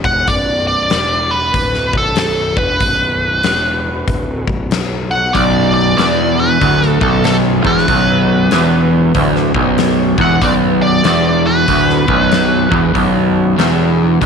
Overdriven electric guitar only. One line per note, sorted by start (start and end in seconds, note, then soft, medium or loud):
5.35 5.97 B1 loud
5.97 6.60 E2 medium
6.61 7.00 D2 loud
7.01 7.63 B1 medium
7.64 7.87 E2 loud
7.88 8.50 B1 medium
8.52 9.14 E2 loud
9.15 9.53 D2 medium
9.55 10.17 B1 medium
10.18 10.41 E2 loud
10.42 11.04 B1 loud
11.05 11.67 E2 loud
11.68 12.06 D2 loud
12.08 12.70 B1 loud
12.71 12.94 E2 loud
12.94 13.57 B1 medium
13.58 14.20 E2 loud
14.21 14.26 D2 medium